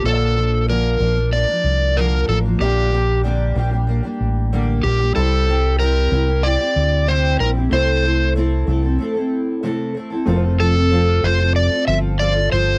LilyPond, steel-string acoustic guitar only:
\new Staff \with { instrumentName = "Steel-string acoustic guitar" } { \time 4/4 \key bes \lydian \tempo 4 = 94 <bes, d f bes d'>8 <f bes d'>8 <bes, d f bes d' bes'>8 <f bes d' bes'>16 <f bes d' bes'>16 <f bes d' bes'>16 <f bes d' bes'>8. <bes, d f bes d' bes'>8 <f bes d' bes'>16 <f bes d' bes'>16 | <bes, d g bes d' g'>8 <g bes d' g'>8 <bes, d g bes d' g'>8 <g bes d' g'>16 <g bes d' g'>16 <g bes d' g'>16 <g bes d' g'>8. <d g bes d' g'>8 <g bes d' g'>16 <g bes d' g'>16 | <c g c' e' g'>8 <g c' e' g'>8 <c g c' e' g'>8 <g c' e' g'>16 <c' e' g'>16 <g c' e' g'>16 <c' e' g'>8. <c g c' e' g'>8 <g c' e' g'>16 <c' e' g'>16 | <c a c' e' a'>8 <a c' e' a'>8 <c a c' e' a'>8 <a c' e' a'>16 <c' e' a'>16 <a c' e' a'>16 <c' e' a'>8. <c a c' e' a'>8 <a c' e' a'>16 <c' e' a'>16 |
<f c' f' a'>16 <c' f' a'>16 <f c' f' a'>16 <c' f' a'>16 <f c' f' a'>8 <f c' f' a'>16 <c' f' a'>8 <c' f' a'>16 <f c' f' a'>8 <f c' f' a'>16 <c' f' a'>16 <f c' f' a'>8 | }